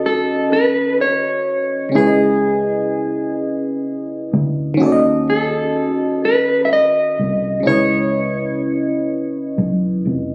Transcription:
Already playing: D#2 D#3 C#4 F#4 A4 D#5
0.06 A4
0.53 B4
1.01 C#5
1.89 C#3 C#4
1.95 C#2 E4 G#4 B4
2.00 C#5
2.07 D#5
3.86 B1
4.33 D2
4.74 D#3 C#4
4.80 D#2 F#4 A4
4.86 D5
4.92 D#5
5.30 A4
6.25 B4
6.65 E5
6.73 D#5
7.19 C2
7.60 C#3 C#4
7.66 C#2 E4 B4 C#5
7.72 D#5
9.58 B1
10.05 F1

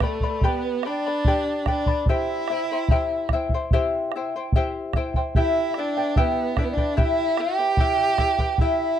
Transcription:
0.00 A3 B4 D5 G5 B5, bombo rim, bombo low
0.06 A4
0.21 B4 D5 B5, bombo low
0.42 G4 B4 D5 G5 B5, bombo low
0.46 B3 B4
0.83 D4 B4 D5 G5 B5, bombo rim
1.06 B4 D5 B5
1.25 G4 B4 D5 G5 B5, bombo low
1.66 B4 D5 G5 B5, bombo rim, bombo low
1.70 D4
1.86 B4 D5 B5, bombo low
2.06 E4 G4 C5 E5 G5, bombo low
2.12 E4 E5
2.48 E4 C5 E5, bombo rim
2.52 G5
2.72 E4 C5 G5
2.88 E4 G4 C5 E5 G5, bombo low
3.29 E5, bombo rim, bombo low
3.33 E4 C5 G5
3.49 bombo low
3.54 E4 C5 G5
3.71 E4 G4 C5 E5 G5, bombo low
4.12 E4, bombo rim
4.16 C5 E5 G5
4.36 E4 C5 G5
4.53 E4 G4 E5 G5, bombo low
4.57 C5
4.93 E4 C5 E5 G5, bombo rim, bombo low
5.14 E4 C5 G5, bombo low
5.35 E4 G4 B4 E5 G5, bombo low
5.74 D5 E5, bombo rim
5.78 D4 E4 B4 G5
5.97 E4 B4 G5
6.16 B3 E4 G4 B4 E5 G5, bombo low
6.57 D4 E4 B4 D5 E5 G5, bombo rim, bombo low
6.63 B3 B4
6.70 D4 D5
6.77 E4 B4 G5, bombo low
6.97 E4 G4 B4 E5 G5, bombo low
7.02 E4
7.37 E4 G4 B4 E5 G5, bombo rim
7.59 E4 B4 G5
7.77 E4 G4 B4 E5 G5, bombo low
8.18 E4 B4 E5 G5, bombo rim, bombo low
8.39 E4 B4 G5, bombo low
8.58 E4 G4 B4 E5 G5, bombo low

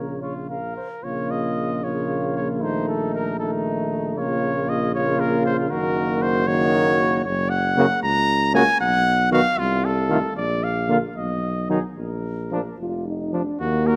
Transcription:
Already playing: A#1 C#3 A#3 A#4 C#5
0.21 F4 C#5
0.49 A#4 F5
0.76 C5
1.03 A#1 C#3 A#3 F4 C#5
1.30 D#5
1.84 C#3 A#3 F4 C#5
2.37 C#5
2.62 D#3 A3 D#4 C5
2.88 A4
3.14 A#4
3.39 D#3 A3 D#4 A4
4.18 A#1 C#3 A#3 F4 C#5
4.69 D#5
4.94 C#3 A#3 F4 C#5
5.20 A#4
5.45 C5
5.70 F#1 D#3 A#3 F#4 A#4
6.22 C5
6.47 D#3 A#3 F#4 C#5
7.25 F#1 C#5
7.50 F#5
7.77 C#3 A#3 F#4
8.02 C#2 A#5
8.53 C#3 A#3 F#4 G#5
8.80 B1 F#5
9.31 D#3 B3 F#4 F5
9.58 C2 F4
9.85 A4
10.10 D#3 A3 F4
10.36 A#1 D5
10.63 F5
10.89 D3 A#3 F4
11.16 B1 D#5
11.70 D#3 F#3 D#4 G#4
11.97 A#1 A#4
12.51 F3 A#3 D4
12.78 F1 F4
13.07 D#4
13.33 F3 D4
13.60 D#2 A#3 F#4
13.86 A#3 F#4 A#4

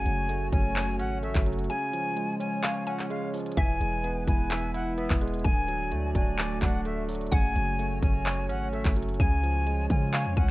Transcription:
Already playing: C#3 A3 F#4 C#5 F#5 G#5
0.06 F#1 F#3, closed hi-hat
0.29 A3, closed hi-hat
0.52 F#1 C#4 G#5, kick, closed hi-hat
0.76 C#5, clap, closed hi-hat
0.99 G#1 C#4 F#5, closed hi-hat
1.23 A3 E5, closed hi-hat
1.35 F#1, kick, clap
1.46 F#3, closed hi-hat
1.53 closed hi-hat
1.59 closed hi-hat
1.64 closed hi-hat
1.70 C#3 G#3 F4 C#5 G#5, closed hi-hat
1.93 F3, closed hi-hat
2.17 G#3, closed hi-hat
2.40 C#4 G#5, closed hi-hat
2.63 C#5 F5, clap, closed hi-hat
2.87 C#4 F#5 G#5, closed hi-hat
2.99 clap
3.10 G#3 F5, closed hi-hat
3.34 F3, closed hi-hat, open hi-hat
3.40 closed hi-hat
3.46 closed hi-hat
3.52 closed hi-hat
3.57 E1 E3 E4 B4 E5 G#5, kick, closed hi-hat
3.81 E1 G#3, closed hi-hat
4.04 B3, closed hi-hat
4.27 E1 E4 G#5, kick, closed hi-hat
4.51 E5, clap, closed hi-hat
4.74 E4 F#5, closed hi-hat
4.98 B3 E5, closed hi-hat
5.10 E1, kick, clap
5.21 G#3, closed hi-hat
5.28 closed hi-hat
5.34 closed hi-hat
5.39 closed hi-hat
5.44 D1 D3 A3 F#4 D5 G#5, kick, closed hi-hat
5.68 F#3, closed hi-hat
5.92 D2 A3, closed hi-hat
6.15 D1 D4 G#5, kick, closed hi-hat
6.38 D5, clap, closed hi-hat
6.62 D1 D4 F#5, kick, clap, closed hi-hat
6.85 A3 E5, closed hi-hat
7.09 F#3, closed hi-hat, open hi-hat
7.15 closed hi-hat
7.21 closed hi-hat
7.27 closed hi-hat
7.32 F#1 C#3 F#4 C#5 F#5 G#5, kick, closed hi-hat
7.55 F#1 F#3, closed hi-hat
7.79 A3, closed hi-hat
8.02 F#1 C#4 G#5, kick, closed hi-hat
8.26 C#5, clap, closed hi-hat
8.49 G#1 C#4 F#5, closed hi-hat
8.73 A3 E5, closed hi-hat
8.85 F#1, kick, clap
8.96 F#3, closed hi-hat
9.03 closed hi-hat
9.09 closed hi-hat
9.14 closed hi-hat
9.20 C#2 C#3 G#3 F4 C#5 G#5, kick, closed hi-hat
9.43 F3, closed hi-hat
9.67 G#3, closed hi-hat
9.90 C#3 C#4 G#5, kick, closed hi-hat
10.13 C#5 F5, clap, closed hi-hat
10.26 F2
10.37 C#2 C#4 F#5 G#5, kick, closed hi-hat

